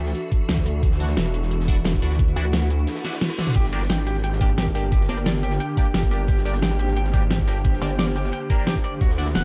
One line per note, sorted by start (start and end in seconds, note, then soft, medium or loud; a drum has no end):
0.00 0.13 D2 medium
0.00 3.52 E3 medium
0.00 0.80 D4 medium
0.00 9.44 D4 medium
0.00 3.52 F#4 medium
0.00 3.56 F#4 medium
0.00 3.56 A4 medium
0.00 1.86 E5 medium
0.06 snare medium
0.06 shaker soft
0.15 closed hi-hat medium
0.32 kick loud
0.32 closed hi-hat medium
0.32 shaker medium
0.48 0.81 D2 loud
0.48 snare loud
0.48 closed hi-hat medium
0.48 open hi-hat medium
0.57 kick medium
0.57 snare medium
0.66 cross-stick soft
0.66 closed hi-hat medium
0.66 open hi-hat medium
0.66 shaker medium
0.83 1.16 D2 loud
0.83 3.53 E4 medium
0.83 kick loud
0.83 closed hi-hat medium
0.83 closed hi-hat loud
0.92 snare soft
1.00 1.08 D4 loud
1.00 1.08 E4 medium
1.00 1.08 F#4 loud
1.00 closed hi-hat medium
1.00 shaker medium
1.08 cross-stick soft
1.08 snare medium
1.08 shaker soft
1.17 2.01 E1 loud
1.17 snare loud
1.17 closed hi-hat medium
1.17 closed hi-hat loud
1.26 cross-stick soft
1.26 closed hi-hat soft
1.34 closed hi-hat medium
1.34 open hi-hat medium
1.34 shaker medium
1.43 snare soft
1.43 shaker soft
1.51 closed hi-hat loud
1.51 closed hi-hat medium
1.60 snare medium
1.68 1.76 D4 medium
1.68 1.76 E4 medium
1.68 1.76 F#4 loud
1.68 kick loud
1.68 closed hi-hat medium
1.68 shaker medium
1.76 3.56 F#5 medium
1.76 cross-stick soft
1.85 snare loud
1.85 closed hi-hat medium
1.94 kick medium
2.02 2.35 D2 loud
2.02 2.16 D4 medium
2.02 2.16 E4 medium
2.02 2.16 F#4 medium
2.02 cross-stick soft
2.02 closed hi-hat medium
2.02 open hi-hat medium
2.02 shaker medium
2.10 snare medium
2.19 kick loud
2.19 closed hi-hat medium
2.28 closed hi-hat soft
2.36 2.86 D2 loud
2.36 2.45 D4 medium
2.36 2.45 E4 medium
2.36 2.45 F#4 loud
2.36 closed hi-hat medium
2.36 shaker medium
2.45 cross-stick soft
2.45 closed hi-hat soft
2.45 shaker soft
2.53 snare loud
2.53 closed hi-hat medium
2.53 closed hi-hat loud
2.62 cross-stick soft
2.62 snare medium
2.62 closed hi-hat soft
2.70 open hi-hat medium
2.70 shaker medium
2.79 shaker soft
2.87 snare loud
2.87 closed hi-hat loud
2.87 closed hi-hat medium
2.87 reverse cymbal medium
2.95 snare loud
2.95 closed hi-hat medium
3.04 3.13 D4 medium
3.04 3.13 E4 medium
3.04 3.13 F#4 loud
3.04 snare soft
3.04 snare loud
3.04 closed hi-hat medium
3.04 shaker medium
3.13 snare loud
3.13 closed hi-hat medium
3.13 closed hi-hat soft
3.21 snare loud
3.21 closed hi-hat loud
3.21 closed hi-hat medium
3.30 cross-stick medium
3.30 snare medium
3.38 3.52 D4 medium
3.38 3.52 E4 medium
3.38 3.52 F#4 medium
3.38 cross-stick soft
3.38 snare loud
3.38 closed hi-hat medium
3.38 open hi-hat medium
3.38 high tom medium
3.38 shaker medium
3.47 mid tom medium
3.56 3.88 G1 loud
3.56 9.44 D3 medium
3.56 8.97 A#3 medium
3.56 3.65 G4 loud
3.56 8.97 G4 medium
3.56 kick loud
3.56 closed hi-hat medium
3.56 closed hi-hat loud
3.56 crash medium
3.64 snare soft
3.73 3.81 A#3 loud
3.73 3.81 D4 medium
3.73 3.81 G4 loud
3.73 3.82 D5 medium
3.73 closed hi-hat medium
3.73 shaker medium
3.81 cross-stick soft
3.81 snare medium
3.81 shaker soft
3.89 4.74 G#1 medium
3.89 9.01 G4 medium
3.89 3.99 G5 medium
3.89 snare loud
3.89 closed hi-hat loud
3.98 cross-stick soft
3.98 closed hi-hat soft
4.07 4.16 G4 medium
4.07 6.64 A#4 medium
4.07 closed hi-hat medium
4.07 open hi-hat medium
4.07 shaker medium
4.15 snare soft
4.15 shaker soft
4.24 4.29 G5 medium
4.24 closed hi-hat medium
4.24 closed hi-hat loud
4.33 snare medium
4.39 4.49 A#3 medium
4.39 4.49 D4 medium
4.39 4.50 G4 medium
4.39 4.49 G4 loud
4.39 9.01 G5 medium
4.39 kick loud
4.39 closed hi-hat medium
4.39 shaker medium
4.49 cross-stick soft
4.58 4.67 G4 medium
4.58 snare loud
4.58 closed hi-hat loud
4.58 closed hi-hat medium
4.66 kick medium
4.75 5.08 G1 loud
4.75 4.88 A#3 medium
4.75 4.88 D4 medium
4.75 4.88 G4 medium
4.75 4.84 G4 medium
4.75 cross-stick soft
4.75 snare medium
4.75 closed hi-hat medium
4.75 open hi-hat medium
4.75 shaker medium
4.92 5.01 G4 medium
4.92 kick loud
4.92 closed hi-hat medium
5.01 snare soft
5.09 5.59 G1 loud
5.09 5.17 A#3 loud
5.09 5.17 D4 medium
5.09 5.17 G4 loud
5.09 5.18 D5 medium
5.09 closed hi-hat medium
5.09 shaker medium
5.18 cross-stick soft
5.18 closed hi-hat soft
5.18 shaker soft
5.26 5.32 D5 loud
5.26 snare loud
5.26 closed hi-hat loud
5.34 cross-stick soft
5.34 snare medium
5.34 closed hi-hat soft
5.43 5.52 G4 medium
5.43 closed hi-hat medium
5.43 open hi-hat medium
5.43 shaker medium
5.51 snare medium
5.51 shaker soft
5.60 5.66 G5 medium
5.60 closed hi-hat loud
5.60 closed hi-hat medium
5.77 5.86 A#3 medium
5.77 5.86 D4 medium
5.77 5.86 G4 medium
5.77 kick loud
5.77 closed hi-hat medium
5.77 shaker medium
5.94 6.27 G1 loud
5.94 6.03 G4 medium
5.94 snare loud
5.94 closed hi-hat medium
5.94 open hi-hat medium
6.03 kick medium
6.03 snare soft
6.11 6.25 A#3 medium
6.11 6.25 D4 medium
6.11 6.25 G4 medium
6.11 6.20 G4 medium
6.11 cross-stick soft
6.11 closed hi-hat medium
6.11 open hi-hat medium
6.11 shaker medium
6.28 6.61 G1 loud
6.28 6.37 G4 loud
6.28 kick loud
6.28 closed hi-hat medium
6.37 snare medium
6.45 6.54 A#3 medium
6.45 6.54 D4 medium
6.45 6.54 G4 loud
6.45 6.55 D5 medium
6.45 closed hi-hat medium
6.45 shaker medium
6.54 9.01 C5 medium
6.54 cross-stick soft
6.54 snare medium
6.54 shaker soft
6.62 7.46 G#1 medium
6.62 6.72 G5 medium
6.62 snare loud
6.62 closed hi-hat medium
6.71 cross-stick soft
6.71 closed hi-hat soft
6.79 6.89 G4 medium
6.79 closed hi-hat medium
6.79 open hi-hat medium
6.79 shaker medium
6.88 snare soft
6.88 shaker soft
6.96 7.02 G5 medium
6.96 closed hi-hat medium
7.04 snare medium
7.13 7.22 A#3 medium
7.13 7.22 D4 medium
7.13 7.22 G4 loud
7.13 7.23 G4 medium
7.13 kick loud
7.13 closed hi-hat medium
7.13 shaker medium
7.22 cross-stick soft
7.31 7.40 G4 medium
7.31 snare loud
7.31 closed hi-hat medium
7.39 kick medium
7.47 7.80 G1 medium
7.47 7.61 A#3 medium
7.47 7.61 D4 medium
7.47 7.61 G4 medium
7.47 7.57 G4 medium
7.47 cross-stick soft
7.47 snare medium
7.47 closed hi-hat medium
7.47 open hi-hat medium
7.47 shaker medium
7.65 7.74 G4 medium
7.65 kick loud
7.65 closed hi-hat medium
7.73 snare soft
7.81 8.31 G1 medium
7.81 7.90 A#3 medium
7.81 7.90 D4 medium
7.81 7.90 G4 loud
7.81 7.91 D5 medium
7.81 closed hi-hat medium
7.81 shaker medium
7.90 cross-stick soft
7.90 closed hi-hat soft
7.90 shaker soft
7.99 8.04 D5 loud
7.99 snare loud
7.99 closed hi-hat medium
8.07 cross-stick soft
8.07 snare medium
8.07 closed hi-hat soft
8.16 8.25 G4 medium
8.16 closed hi-hat medium
8.16 open hi-hat medium
8.16 shaker medium
8.24 snare medium
8.24 shaker soft
8.32 8.38 G5 medium
8.32 closed hi-hat medium
8.50 8.56 A#3 loud
8.50 8.56 D4 medium
8.50 8.56 G4 loud
8.50 8.59 A#4 medium
8.50 kick loud
8.50 closed hi-hat medium
8.50 shaker medium
8.58 8.67 A#3 medium
8.58 8.67 D4 medium
8.58 8.67 G4 medium
8.66 8.76 G4 loud
8.66 snare loud
8.66 closed hi-hat medium
8.66 open hi-hat medium
8.75 kick medium
8.75 snare medium
8.84 8.93 D5 loud
8.84 cross-stick soft
8.84 closed hi-hat medium
8.84 open hi-hat medium
8.84 shaker medium
9.01 9.34 D2 loud
9.01 9.44 F#3 medium
9.01 9.44 E4 medium
9.01 9.10 F#4 loud
9.01 kick loud
9.01 closed hi-hat loud
9.01 closed hi-hat medium
9.08 9.44 F#4 medium
9.08 snare medium
9.18 9.26 D4 loud
9.18 9.26 E4 medium
9.18 9.26 F#4 loud
9.18 9.27 D5 medium
9.18 closed hi-hat medium
9.18 shaker medium
9.25 9.44 E5 medium
9.25 cross-stick soft
9.25 snare medium
9.25 shaker soft
9.34 9.44 E1 loud
9.34 9.44 F#5 medium
9.34 snare loud
9.34 closed hi-hat medium